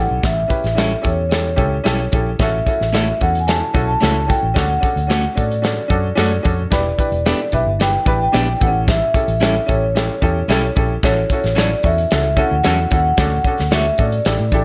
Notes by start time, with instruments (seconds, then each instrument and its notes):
Already playing: upright piano C#4 E4 G4 A4
0.00 vibraphone F#5
0.11 fingered electric bass B1
0.23 fingered electric bass A1, vibraphone E5, kick, snare, closed hi-hat
0.48 upright piano C#4 E4 G4 B4, kick, closed hi-hat
0.64 fingered electric bass A1, snare, closed hi-hat
0.75 clean electric guitar G3 C#4 E4 A4, upright piano C#4 E4 G4 A4, snare, closed hi-hat
1.02 fingered electric bass E2, upright piano C#4 E4 G4 A4, kick, closed hi-hat
1.06 vibraphone C#5
1.29 upright piano C#4 E4 G4 A4, snare, closed hi-hat
1.56 fingered electric bass C#2, upright piano C#4 E4 G4 A4, kick, closed hi-hat
1.84 fingered electric bass B1, clean electric guitar G3 C#4 E4 A4, upright piano C#4 E4 G4 A4, snare, closed hi-hat
2.12 fingered electric bass A#1, upright piano C#4 E4 G4 A4, kick, closed hi-hat
2.39 fingered electric bass A1, upright piano C#4 E4 F#4 A4, vibraphone E5, kick, snare, closed hi-hat
2.66 upright piano C#4 E4 F#4 A4, kick, closed hi-hat
2.81 fingered electric bass A1, snare
2.92 clean electric guitar A3 C#4 E4 A4, upright piano C#4 E4 F#4 A4, snare, closed hi-hat
3.21 fingered electric bass E2, upright piano C#4 E4 F#4 A4, vibraphone F#5, kick, closed hi-hat
3.35 closed hi-hat
3.40 vibraphone G#5
3.47 upright piano C#4 E4 F#4 A4, vibraphone A5, snare, closed hi-hat
3.74 fingered electric bass B1, upright piano C#4 E4 F#4 A4, kick, closed hi-hat
3.88 vibraphone A5
4.00 fingered electric bass C#2, clean electric guitar A3 C#4 E4 A4, upright piano C#4 E4 F#4 A4, snare, closed hi-hat
4.26 upright piano C#4 E4 F#4 A4, vibraphone G5, kick, closed hi-hat
4.43 fingered electric bass A1
4.54 fingered electric bass D2, upright piano C#4 D4 F#4 A4, kick, snare, closed hi-hat
4.80 upright piano C#4 D4 F#4 A4, kick, closed hi-hat
4.96 fingered electric bass D2, closed hi-hat
5.07 clean electric guitar A3 C#4 F#4 A4, upright piano C#4 D4 F#4 A4, snare
5.11 closed hi-hat
5.35 fingered electric bass A2, upright piano C#4 D4 F#4 A4, vibraphone D5, kick, closed hi-hat
5.52 closed hi-hat
5.62 upright piano C#4 D4 F#4 A4, snare, closed hi-hat
5.88 fingered electric bass F#2, upright piano C#4 D4 F#4 A4, kick, closed hi-hat
6.15 fingered electric bass F#2, clean electric guitar A3 C#4 F#4 A4, upright piano C#4 D4 F#4 A4, snare, closed hi-hat
6.43 fingered electric bass F2, upright piano C#4 D4 F#4 A4, kick, closed hi-hat
6.70 fingered electric bass E1, upright piano D4 E4 G4 B4, vibraphone D5, kick, snare, closed hi-hat
6.98 upright piano D4 E4 G4 B4, kick, closed hi-hat
7.12 fingered electric bass E1, closed hi-hat
7.25 clean electric guitar B3 D4 G4 B4, upright piano D4 E4 G4 A4, snare, closed hi-hat
7.52 fingered electric bass B1, upright piano D4 E4 G4 B4, vibraphone E5, kick, closed hi-hat
7.66 fingered electric bass G1
7.79 upright piano D4 E4 G4 B4, vibraphone G5, snare, closed hi-hat
8.05 fingered electric bass A1, upright piano D4 E4 G4 B4, kick, closed hi-hat
8.22 vibraphone G5
8.32 fingered electric bass A#1, clean electric guitar B3 D4 G4 B4, upright piano D4 E4 G4 D5, snare, closed hi-hat
8.60 fingered electric bass A1, upright piano B3 E4 G4 A4, vibraphone F#5, kick, closed hi-hat
8.67 upright piano C#4
8.88 vibraphone E5, kick, snare, closed hi-hat
9.14 upright piano C#4 E4 G4 A4, kick, closed hi-hat
9.28 fingered electric bass A1, closed hi-hat
9.40 clean electric guitar G3 C#4 E4 A4, upright piano C#4 E4 G4 A4, snare, closed hi-hat
9.66 fingered electric bass A1, upright piano C#4 E4 G4 A4, vibraphone C#5, kick, closed hi-hat
9.95 upright piano C#4 E4 G4 A4, snare, closed hi-hat
10.22 fingered electric bass E2, upright piano C#4 E4 G4 A4, kick, closed hi-hat
10.48 fingered electric bass B1, clean electric guitar G3 C#4 E4 A4, upright piano C#4 E4 G4 A4, snare, closed hi-hat
10.76 fingered electric bass A#1, upright piano C#4 E4 G4 A4, kick, closed hi-hat
11.03 fingered electric bass A1, upright piano C#4 E4 F#4 A4, vibraphone C#5, kick, snare, closed hi-hat
11.30 upright piano C#4 E4 F#4 A4, kick, closed hi-hat
11.44 fingered electric bass A1, snare, closed hi-hat
11.55 clean electric guitar F#3 C#4 E4 A4, upright piano C#4 E4, vibraphone D5, snare, closed hi-hat
11.59 upright piano F#4 A4
11.83 fingered electric bass E2, upright piano C#4 E4 F#4 A4, vibraphone E5, kick, closed hi-hat
11.98 closed hi-hat
12.11 fingered electric bass C#2, upright piano C#4 E4 F#4 A4, snare, closed hi-hat
12.36 upright piano C#4 E4 F#4 A4, vibraphone F#5, kick, closed hi-hat
12.51 fingered electric bass D2
12.64 fingered electric bass E2, clean electric guitar F#3 C#4 E4 A4, upright piano C#4 E4 F#4 A4, snare, closed hi-hat
12.90 fingered electric bass D#2, upright piano C#4 E4 F#4 A4, vibraphone F#5, kick, closed hi-hat
13.17 fingered electric bass D2, upright piano C#4 D4 F#4 A4, kick, snare, closed hi-hat
13.44 upright piano C#4 D4 F#4 A4, kick, closed hi-hat
13.58 fingered electric bass D2, snare, closed hi-hat
13.71 clean electric guitar A3 C#4 F#4 A4, upright piano C#4 D4 F#4 A4, vibraphone E5, snare, closed hi-hat
13.98 fingered electric bass A2, upright piano C#4 D4 F#4 A4, vibraphone D5, kick, closed hi-hat
14.12 closed hi-hat
14.25 fingered electric bass A1, upright piano D4 E4 G4 A4, snare, closed hi-hat
14.40 fingered electric bass A2
14.52 fingered electric bass A1, upright piano D4 E4 G4 A4, kick, closed hi-hat